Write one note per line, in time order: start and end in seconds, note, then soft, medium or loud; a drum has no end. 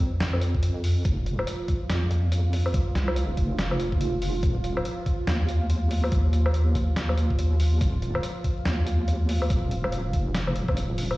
0.00 0.61 F2 medium
0.00 11.17 F4 medium
0.20 snare loud
0.20 closed hi-hat medium
0.33 low woodblock medium
0.41 closed hi-hat medium
0.54 kick medium
0.63 1.04 F2 loud
0.63 closed hi-hat medium
0.84 open hi-hat medium
1.05 1.46 F1 loud
1.05 kick loud
1.05 closed hi-hat medium
1.26 closed hi-hat medium
1.39 low woodblock medium
1.47 closed hi-hat medium
1.68 kick medium
1.68 closed hi-hat medium
1.89 2.73 F2 medium
1.89 snare loud
1.89 closed hi-hat medium
2.11 closed hi-hat medium
2.32 closed hi-hat medium
2.53 open hi-hat medium
2.66 low woodblock medium
2.74 kick loud
2.74 closed hi-hat medium
2.95 3.36 C2 medium
2.95 snare medium
2.95 closed hi-hat medium
3.08 low woodblock medium
3.16 closed hi-hat medium
3.37 4.20 F1 medium
3.37 kick medium
3.37 closed hi-hat medium
3.59 snare loud
3.59 closed hi-hat medium
3.71 low woodblock medium
3.80 closed hi-hat medium
3.92 kick medium
4.01 closed hi-hat medium
4.22 4.42 F1 loud
4.22 open hi-hat medium
4.43 4.84 D#1 medium
4.43 kick loud
4.43 closed hi-hat medium
4.64 closed hi-hat soft
4.77 low woodblock medium
4.85 closed hi-hat medium
5.06 kick medium
5.06 closed hi-hat soft
5.27 6.11 D#2 medium
5.27 snare loud
5.27 closed hi-hat medium
5.49 closed hi-hat medium
5.70 closed hi-hat medium
5.91 open hi-hat medium
6.04 low woodblock medium
6.12 7.37 D#2 loud
6.12 kick loud
6.12 closed hi-hat medium
6.33 closed hi-hat soft
6.46 low woodblock medium
6.54 closed hi-hat medium
6.75 kick medium
6.75 closed hi-hat medium
6.96 snare loud
6.96 closed hi-hat medium
7.09 low woodblock medium
7.18 closed hi-hat soft
7.30 kick medium
7.38 7.80 D#2 loud
7.38 closed hi-hat medium
7.60 open hi-hat medium
7.81 8.22 D#1 medium
7.81 kick loud
7.81 closed hi-hat medium
8.02 closed hi-hat medium
8.15 low woodblock medium
8.23 closed hi-hat medium
8.44 kick medium
8.44 closed hi-hat medium
8.65 9.49 D#2 medium
8.65 snare loud
8.65 closed hi-hat medium
8.87 closed hi-hat medium
9.08 closed hi-hat medium
9.29 open hi-hat medium
9.42 low woodblock medium
9.50 10.12 D#1 medium
9.50 kick loud
9.50 closed hi-hat medium
9.71 closed hi-hat medium
9.84 low woodblock medium
9.92 closed hi-hat medium
10.13 10.54 F1 medium
10.13 kick medium
10.13 closed hi-hat medium
10.35 snare loud
10.35 closed hi-hat medium
10.47 low woodblock medium
10.55 11.17 D#1 medium
10.55 closed hi-hat medium
10.68 kick medium
10.68 low woodblock medium
10.77 closed hi-hat medium
10.98 open hi-hat loud
11.11 low woodblock medium